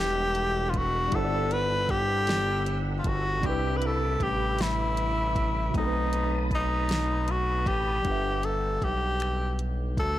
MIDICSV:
0, 0, Header, 1, 6, 480
1, 0, Start_track
1, 0, Tempo, 769231
1, 703, Time_signature, 6, 3, 24, 8
1, 6358, End_track
2, 0, Start_track
2, 0, Title_t, "Tonewheel organ"
2, 0, Program_c, 0, 16
2, 0, Note_on_c, 0, 69, 58
2, 0, Note_on_c, 0, 78, 58
2, 0, Note_on_c, 0, 83, 61
2, 0, Note_on_c, 0, 88, 64
2, 2117, Note_off_c, 0, 78, 0
2, 2119, Note_off_c, 0, 69, 0
2, 2119, Note_off_c, 0, 88, 0
2, 2120, Note_off_c, 0, 83, 0
2, 2142, Note_on_c, 0, 71, 73
2, 2145, Note_on_c, 0, 83, 58
2, 2147, Note_on_c, 0, 86, 78
2, 2148, Note_on_c, 0, 76, 64
2, 3570, Note_off_c, 0, 86, 0
2, 3571, Note_off_c, 0, 76, 0
2, 3588, Note_on_c, 0, 87, 80
2, 3591, Note_on_c, 0, 81, 62
2, 4997, Note_off_c, 0, 71, 0
2, 4999, Note_off_c, 0, 83, 0
2, 5011, Note_off_c, 0, 87, 0
2, 5012, Note_off_c, 0, 81, 0
2, 6358, End_track
3, 0, Start_track
3, 0, Title_t, "Tenor saxophone"
3, 0, Program_c, 1, 66
3, 0, Note_on_c, 1, 67, 110
3, 435, Note_on_c, 1, 65, 62
3, 444, Note_off_c, 1, 67, 0
3, 481, Note_on_c, 1, 66, 96
3, 490, Note_off_c, 1, 65, 0
3, 718, Note_on_c, 1, 69, 95
3, 727, Note_off_c, 1, 66, 0
3, 952, Note_on_c, 1, 71, 105
3, 961, Note_off_c, 1, 69, 0
3, 1187, Note_on_c, 1, 67, 121
3, 1196, Note_off_c, 1, 71, 0
3, 1736, Note_off_c, 1, 67, 0
3, 1863, Note_on_c, 1, 65, 61
3, 1919, Note_on_c, 1, 66, 97
3, 1928, Note_off_c, 1, 65, 0
3, 2159, Note_on_c, 1, 67, 85
3, 2169, Note_off_c, 1, 66, 0
3, 2351, Note_on_c, 1, 71, 68
3, 2361, Note_off_c, 1, 67, 0
3, 2408, Note_on_c, 1, 69, 90
3, 2417, Note_off_c, 1, 71, 0
3, 2639, Note_on_c, 1, 67, 93
3, 2648, Note_off_c, 1, 69, 0
3, 2882, Note_on_c, 1, 64, 91
3, 2892, Note_off_c, 1, 67, 0
3, 3592, Note_off_c, 1, 64, 0
3, 3606, Note_on_c, 1, 63, 78
3, 4049, Note_off_c, 1, 63, 0
3, 4086, Note_on_c, 1, 63, 93
3, 4559, Note_on_c, 1, 66, 95
3, 4569, Note_off_c, 1, 63, 0
3, 4794, Note_on_c, 1, 67, 101
3, 4803, Note_off_c, 1, 66, 0
3, 5271, Note_on_c, 1, 69, 82
3, 5280, Note_off_c, 1, 67, 0
3, 5514, Note_on_c, 1, 67, 99
3, 5524, Note_off_c, 1, 69, 0
3, 5988, Note_off_c, 1, 67, 0
3, 6237, Note_on_c, 1, 69, 108
3, 6358, Note_off_c, 1, 69, 0
3, 6358, End_track
4, 0, Start_track
4, 0, Title_t, "Tine electric piano"
4, 0, Program_c, 2, 4
4, 0, Control_c, 2, 64, 127
4, 0, Note_on_c, 2, 55, 62
4, 0, Note_on_c, 2, 62, 51
4, 0, Note_on_c, 2, 64, 56
4, 0, Note_on_c, 2, 69, 51
4, 0, Note_on_c, 2, 71, 70
4, 0, Note_on_c, 2, 78, 58
4, 666, Note_off_c, 2, 55, 0
4, 672, Note_off_c, 2, 62, 0
4, 674, Note_on_c, 2, 55, 68
4, 677, Note_off_c, 2, 64, 0
4, 684, Note_off_c, 2, 78, 0
4, 687, Note_on_c, 2, 62, 60
4, 690, Note_off_c, 2, 69, 0
4, 701, Note_on_c, 2, 64, 58
4, 714, Note_on_c, 2, 78, 55
4, 716, Note_off_c, 2, 71, 0
4, 724, Note_on_c, 2, 69, 57
4, 736, Note_on_c, 2, 72, 55
4, 760, Note_off_c, 2, 72, 0
4, 776, Note_on_c, 2, 74, 61
4, 2103, Note_off_c, 2, 55, 0
4, 2110, Note_off_c, 2, 62, 0
4, 2117, Note_off_c, 2, 64, 0
4, 2120, Note_on_c, 2, 48, 65
4, 2123, Note_off_c, 2, 78, 0
4, 2128, Note_off_c, 2, 69, 0
4, 2136, Note_on_c, 2, 55, 60
4, 2149, Note_on_c, 2, 62, 60
4, 2151, Control_c, 2, 64, 0
4, 2154, Note_off_c, 2, 74, 0
4, 2166, Note_on_c, 2, 64, 54
4, 2179, Note_on_c, 2, 71, 71
4, 2265, Control_c, 2, 64, 127
4, 3546, Note_off_c, 2, 48, 0
4, 3554, Note_off_c, 2, 55, 0
4, 3560, Note_on_c, 2, 47, 67
4, 3561, Note_off_c, 2, 62, 0
4, 3569, Note_off_c, 2, 64, 0
4, 3574, Note_on_c, 2, 57, 64
4, 3576, Note_off_c, 2, 71, 0
4, 3590, Control_c, 2, 64, 0
4, 3590, Note_on_c, 2, 60, 64
4, 3603, Note_on_c, 2, 63, 57
4, 3617, Note_on_c, 2, 69, 60
4, 3640, Note_off_c, 2, 69, 0
4, 3659, Note_on_c, 2, 71, 70
4, 3684, Control_c, 2, 64, 127
4, 4986, Note_off_c, 2, 47, 0
4, 4993, Note_off_c, 2, 57, 0
4, 5001, Note_off_c, 2, 60, 0
4, 5004, Note_on_c, 2, 55, 55
4, 5008, Note_off_c, 2, 63, 0
4, 5021, Note_on_c, 2, 62, 46
4, 5032, Control_c, 2, 64, 0
4, 5034, Note_on_c, 2, 78, 44
4, 5036, Note_off_c, 2, 71, 0
4, 5050, Note_on_c, 2, 71, 51
4, 5063, Note_on_c, 2, 76, 61
4, 5138, Control_c, 2, 64, 127
4, 6358, Note_off_c, 2, 55, 0
4, 6358, Note_off_c, 2, 62, 0
4, 6358, Note_off_c, 2, 71, 0
4, 6358, Note_off_c, 2, 76, 0
4, 6358, Note_off_c, 2, 78, 0
4, 6358, End_track
5, 0, Start_track
5, 0, Title_t, "Analog synth bass"
5, 0, Program_c, 3, 38
5, 0, Note_on_c, 3, 28, 88
5, 680, Note_off_c, 3, 28, 0
5, 707, Note_on_c, 3, 31, 90
5, 1880, Note_off_c, 3, 31, 0
5, 1907, Note_on_c, 3, 31, 97
5, 2149, Note_on_c, 3, 36, 107
5, 2158, Note_off_c, 3, 31, 0
5, 2601, Note_off_c, 3, 36, 0
5, 2629, Note_on_c, 3, 33, 80
5, 3561, Note_off_c, 3, 33, 0
5, 3591, Note_on_c, 3, 35, 102
5, 4789, Note_on_c, 3, 33, 87
5, 4798, Note_off_c, 3, 35, 0
5, 5002, Note_off_c, 3, 33, 0
5, 5030, Note_on_c, 3, 31, 99
5, 5481, Note_off_c, 3, 31, 0
5, 5509, Note_on_c, 3, 35, 72
5, 6230, Note_on_c, 3, 38, 82
5, 6239, Note_off_c, 3, 35, 0
5, 6358, Note_off_c, 3, 38, 0
5, 6358, End_track
6, 0, Start_track
6, 0, Title_t, "Drums"
6, 218, Note_on_c, 9, 42, 48
6, 280, Note_off_c, 9, 42, 0
6, 460, Note_on_c, 9, 36, 81
6, 461, Note_on_c, 9, 42, 56
6, 522, Note_off_c, 9, 36, 0
6, 523, Note_off_c, 9, 42, 0
6, 699, Note_on_c, 9, 42, 74
6, 701, Note_on_c, 9, 36, 108
6, 761, Note_off_c, 9, 42, 0
6, 763, Note_off_c, 9, 36, 0
6, 942, Note_on_c, 9, 42, 55
6, 1004, Note_off_c, 9, 42, 0
6, 1179, Note_on_c, 9, 36, 94
6, 1180, Note_on_c, 9, 42, 54
6, 1242, Note_off_c, 9, 36, 0
6, 1242, Note_off_c, 9, 42, 0
6, 1418, Note_on_c, 9, 42, 75
6, 1430, Note_on_c, 9, 38, 110
6, 1480, Note_off_c, 9, 42, 0
6, 1493, Note_off_c, 9, 38, 0
6, 1662, Note_on_c, 9, 42, 51
6, 1725, Note_off_c, 9, 42, 0
6, 1899, Note_on_c, 9, 42, 57
6, 1900, Note_on_c, 9, 36, 91
6, 1962, Note_off_c, 9, 36, 0
6, 1962, Note_off_c, 9, 42, 0
6, 2142, Note_on_c, 9, 36, 98
6, 2143, Note_on_c, 9, 42, 71
6, 2205, Note_off_c, 9, 36, 0
6, 2205, Note_off_c, 9, 42, 0
6, 2382, Note_on_c, 9, 42, 47
6, 2444, Note_off_c, 9, 42, 0
6, 2621, Note_on_c, 9, 36, 84
6, 2625, Note_on_c, 9, 42, 56
6, 2684, Note_off_c, 9, 36, 0
6, 2687, Note_off_c, 9, 42, 0
6, 2862, Note_on_c, 9, 42, 67
6, 2874, Note_on_c, 9, 38, 111
6, 2924, Note_off_c, 9, 42, 0
6, 2937, Note_off_c, 9, 38, 0
6, 3103, Note_on_c, 9, 42, 49
6, 3166, Note_off_c, 9, 42, 0
6, 3342, Note_on_c, 9, 36, 88
6, 3345, Note_on_c, 9, 42, 61
6, 3404, Note_off_c, 9, 36, 0
6, 3407, Note_off_c, 9, 42, 0
6, 3583, Note_on_c, 9, 36, 110
6, 3585, Note_on_c, 9, 42, 67
6, 3646, Note_off_c, 9, 36, 0
6, 3648, Note_off_c, 9, 42, 0
6, 3824, Note_on_c, 9, 42, 50
6, 3886, Note_off_c, 9, 42, 0
6, 4061, Note_on_c, 9, 36, 85
6, 4064, Note_on_c, 9, 42, 50
6, 4124, Note_off_c, 9, 36, 0
6, 4127, Note_off_c, 9, 42, 0
6, 4299, Note_on_c, 9, 42, 69
6, 4312, Note_on_c, 9, 38, 116
6, 4362, Note_off_c, 9, 42, 0
6, 4374, Note_off_c, 9, 38, 0
6, 4541, Note_on_c, 9, 42, 55
6, 4604, Note_off_c, 9, 42, 0
6, 4782, Note_on_c, 9, 36, 97
6, 4785, Note_on_c, 9, 42, 53
6, 4844, Note_off_c, 9, 36, 0
6, 4848, Note_off_c, 9, 42, 0
6, 5021, Note_on_c, 9, 42, 58
6, 5023, Note_on_c, 9, 36, 99
6, 5084, Note_off_c, 9, 42, 0
6, 5085, Note_off_c, 9, 36, 0
6, 5262, Note_on_c, 9, 42, 45
6, 5325, Note_off_c, 9, 42, 0
6, 5502, Note_on_c, 9, 36, 73
6, 5504, Note_on_c, 9, 42, 45
6, 5564, Note_off_c, 9, 36, 0
6, 5567, Note_off_c, 9, 42, 0
6, 5741, Note_on_c, 9, 42, 59
6, 5754, Note_on_c, 9, 26, 99
6, 5803, Note_off_c, 9, 42, 0
6, 5816, Note_off_c, 9, 26, 0
6, 5984, Note_on_c, 9, 42, 42
6, 6047, Note_off_c, 9, 42, 0
6, 6224, Note_on_c, 9, 36, 77
6, 6227, Note_on_c, 9, 42, 49
6, 6286, Note_off_c, 9, 36, 0
6, 6290, Note_off_c, 9, 42, 0
6, 6358, End_track
0, 0, End_of_file